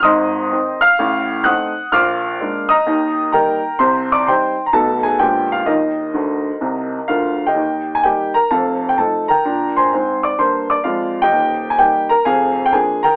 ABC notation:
X:1
M:4/4
L:1/16
Q:"Swing" 1/4=128
K:Eb
V:1 name="Grand piano"
[ec'e']6 [ff']6 [^fe'^f']4 | [fd'f']6 [ebe']6 [Bgb]4 | [cc']2 [dd']2 [cgc']3 b [=A=a]2 [_A_a]2 [Gg]2 [Ff]2 | [EBe]12 [FBf]3 [Geg]- |
[Geg]3 a [Gg]2 [Bb]2 [=Af=a]3 g [Aa]2 [Bgb]2- | [Bgb]2 [cac']4 [dd']2 [cc']2 [dd']2 [Fdf]3 [Geg]- | [Geg]3 a [Gg]2 [Bb]2 [Afa]3 g [Aa]2 [Bgb]2 |]
V:2 name="Grand piano" clef=bass
[A,,,A,,]4 [E,CE]4 [=A,,,=A,,]4 [=A,CE]4 | [B,,,B,,]4 [A,B,D]4 [E,,E,]4 [G,B,E]4 | [C,,C,]4 [G,CE]4 [=B,,,=B,,=A,=B,^D]4 [_B,,,_B,,_A,_C=D]4 | [E,,E,]4 [D,,D,]4 [C,,C,]4 [D,,D,]4 |
[E,,E,]4 [G,B,E]4 [F,,,F,,]4 [F,=A,E]4 | [B,,D]4 [A,,C]4 [G,,B,]4 [F,,A,]4 | [E,,,E,,]4 [G,B,E]4 [F,,,F,,]4 [F,B,D]4 |]